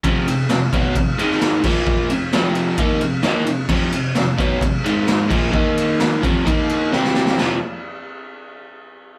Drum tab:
CC |--------------x-|----------------|x-------------x-|----------------|
RD |x-x-x-x-x-x-x---|--x-x-x-x-x-x-x-|--x-x-x-x-x-x---|--x-x-x-x-x-----|
SD |----o------oo---|----o-------o---|----o-------o---|----o-------oooo|
BD |o-----o-o-----o-|o-------o-------|o-----o-o-----o-|o-----o-o-------|

CC |x---------------|
RD |----------------|
SD |o---------------|
BD |----------------|